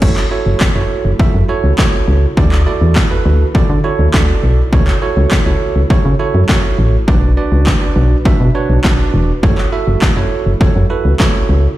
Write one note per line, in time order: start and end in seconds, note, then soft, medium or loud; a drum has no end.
0.02 0.21 F#1 loud
0.02 0.25 E4 medium
0.02 0.25 F#4 medium
0.02 0.25 A4 medium
0.02 0.26 C#5 loud
0.02 kick loud
0.02 crash medium
0.16 clap medium
0.31 0.66 E4 medium
0.31 0.66 F#4 medium
0.31 0.66 A4 medium
0.31 0.67 C#5 medium
0.46 0.56 F#1 loud
0.60 kick loud
0.60 snare medium
0.60 clap loud
0.75 0.85 F#1 medium
0.75 1.10 E4 medium
0.75 1.10 F#4 medium
0.75 1.11 A4 medium
0.75 1.11 C#5 medium
1.05 1.14 F#1 medium
1.19 1.25 F#2 soft
1.19 1.43 E4 medium
1.19 1.43 F#4 medium
1.19 1.43 A4 medium
1.19 1.43 E5 loud
1.19 kick loud
1.34 1.44 F#2 medium
1.49 1.72 E4 medium
1.49 1.72 F#4 medium
1.49 1.72 A4 medium
1.49 1.72 C#5 loud
1.64 1.73 C#2 medium
1.78 2.25 E4 medium
1.78 2.25 F#4 medium
1.78 2.25 A4 medium
1.78 2.25 C#5 loud
1.78 kick loud
1.78 snare medium
1.78 clap loud
2.08 2.27 C#2 medium
2.37 2.66 D2 loud
2.37 2.60 E4 medium
2.37 2.61 F#4 medium
2.37 2.61 A4 medium
2.37 2.61 D5 loud
2.37 kick loud
2.52 clap medium
2.66 3.02 E4 medium
2.66 3.02 F#4 medium
2.66 3.02 A4 medium
2.66 3.02 D5 medium
2.81 3.00 E2 medium
2.96 kick loud
2.96 snare medium
2.96 clap loud
3.10 3.46 E4 medium
3.10 3.46 F#4 medium
3.10 3.46 A4 medium
3.10 3.46 B4 loud
3.25 3.44 D2 loud
3.54 3.61 D3 soft
3.54 3.78 E4 medium
3.54 3.78 F#4 medium
3.54 3.78 A4 medium
3.54 3.78 D5 loud
3.54 kick loud
3.70 3.79 D3 loud
3.84 4.07 E4 medium
3.84 4.07 F#4 medium
3.84 4.08 A4 medium
3.84 4.08 C#5 loud
3.99 4.09 D2 medium
4.13 4.33 D2 loud
4.13 4.60 E4 medium
4.13 4.60 F#4 medium
4.13 4.60 A4 medium
4.13 4.61 D5 loud
4.13 kick loud
4.13 snare medium
4.13 clap loud
4.43 4.62 B1 medium
4.72 4.92 C#2 loud
4.72 4.96 E4 medium
4.72 4.96 F#4 medium
4.72 4.96 A4 medium
4.72 4.96 C#5 loud
4.72 kick loud
4.87 clap medium
5.02 5.37 E4 medium
5.02 5.37 F#4 medium
5.02 5.37 A4 medium
5.02 5.37 C#5 medium
5.17 5.26 C#2 loud
5.31 kick loud
5.31 snare medium
5.31 clap loud
5.46 5.56 C#2 loud
5.46 5.81 E4 medium
5.46 5.81 F#4 medium
5.46 5.81 A4 medium
5.46 5.81 C#5 loud
5.76 5.85 C#2 medium
5.90 5.96 C#3 soft
5.90 6.13 E4 medium
5.90 6.13 F#4 medium
5.90 6.14 A4 medium
5.90 6.14 C#5 loud
5.90 kick loud
6.05 6.15 C#3 medium
6.19 6.43 E4 medium
6.19 6.43 F#4 medium
6.19 6.43 A4 medium
6.19 6.43 C#5 loud
6.34 6.44 F#2 medium
6.49 6.96 E4 medium
6.49 6.96 F#4 medium
6.49 6.96 A4 medium
6.49 6.96 C#5 loud
6.49 kick loud
6.49 snare loud
6.49 clap loud
6.78 6.97 A1 medium
7.08 7.36 B1 loud
7.08 7.31 D4 medium
7.08 7.31 F#4 medium
7.08 7.31 B4 medium
7.08 7.31 D5 medium
7.08 kick loud
7.37 7.72 D4 medium
7.37 7.72 F#4 medium
7.37 7.72 B4 medium
7.37 7.72 D5 medium
7.52 7.71 C#2 medium
7.67 kick loud
7.67 snare medium
7.67 clap loud
7.81 8.16 D4 medium
7.81 8.16 F#4 medium
7.81 8.16 B4 medium
7.81 8.17 D5 medium
7.96 8.15 B1 loud
8.25 8.31 B2 medium
8.25 8.49 D4 medium
8.25 8.49 F#4 medium
8.25 8.49 B4 medium
8.25 8.49 E5 loud
8.25 kick loud
8.40 8.50 B2 medium
8.55 8.78 D4 medium
8.55 8.78 F#4 medium
8.55 8.78 B4 medium
8.55 8.78 C#5 loud
8.69 8.79 B1 medium
8.84 9.03 B1 medium
8.84 9.31 D4 medium
8.84 9.31 F#4 medium
8.84 9.31 B4 medium
8.84 9.31 D5 loud
8.84 kick loud
8.84 snare medium
8.84 clap loud
9.14 9.33 E1 loud
9.43 9.62 F#1 loud
9.43 9.66 E4 medium
9.43 9.66 F#4 medium
9.43 9.66 A4 medium
9.43 9.67 C#5 loud
9.43 kick loud
9.58 clap medium
9.72 10.07 E4 medium
9.72 10.07 F#4 medium
9.72 10.08 A4 medium
9.72 10.08 E5 medium
9.87 9.97 F#1 loud
10.02 kick loud
10.02 snare medium
10.02 clap loud
10.16 10.26 F#1 medium
10.16 10.52 E4 medium
10.16 10.52 F#4 medium
10.16 10.52 A4 medium
10.16 10.52 C#5 medium
10.46 10.56 F#1 medium
10.60 10.67 F#2 soft
10.60 10.84 E4 medium
10.60 10.84 F#4 medium
10.60 10.84 A4 medium
10.60 10.84 C#5 loud
10.60 kick loud
10.76 10.85 F#2 medium
10.90 11.13 E4 medium
10.90 11.13 F#4 medium
10.90 11.14 A4 medium
10.90 11.14 B4 loud
11.05 11.14 C#2 medium
11.19 11.66 E4 medium
11.19 11.66 F#4 medium
11.19 11.66 A4 medium
11.19 11.66 C#5 medium
11.19 kick loud
11.19 snare medium
11.19 clap loud
11.49 11.68 C#2 medium